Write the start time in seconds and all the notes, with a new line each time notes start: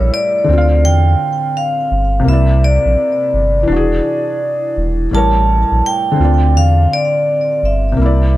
Already playing: A2 G3 A#4 E5
0.00 A#1
0.14 D5
0.44 D2 D3
0.49 C4
0.53 F4
0.58 F5
0.84 E2 G5
1.57 F5
1.91 G1
2.20 C3
2.24 C2 A#3
2.28 E4 E5
2.33 D5
2.64 D5
2.85 A#1
3.33 G1
3.63 E3
3.68 E1 D4
3.72 F#4
3.76 G#4
4.77 E1
5.11 A1 A2 G3 A5
5.16 A#4 C#5
5.71 A#1
5.86 G5
6.12 D3
6.16 D2 C4
6.21 F4
6.25 D5
6.55 E2 F5
6.93 D5
7.63 G1 E5
7.92 C3
7.97 C2 A#3
8.01 E4
8.06 D5